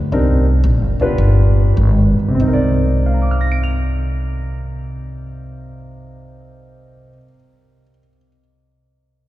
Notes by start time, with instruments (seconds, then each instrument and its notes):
Already playing: upright bass D2
0.12 upright bass C2, grand piano C4 D4 D#4 G4 A#4
0.64 upright bass A#1
0.81 upright bass G1
1.00 upright bass D#1, grand piano B3 D4 F4 G4 B4
1.18 upright bass G1
1.77 upright bass G#1
2.19 muted upright bass stroke
2.28 grand piano C3
2.35 grand piano C4
2.40 upright bass C2, grand piano D#4
2.47 grand piano A#4
2.53 grand piano D5
3.06 grand piano F5
3.14 grand piano A#5
3.22 grand piano D6
3.31 grand piano F6
3.41 grand piano A#6
3.52 grand piano D7
3.63 grand piano F7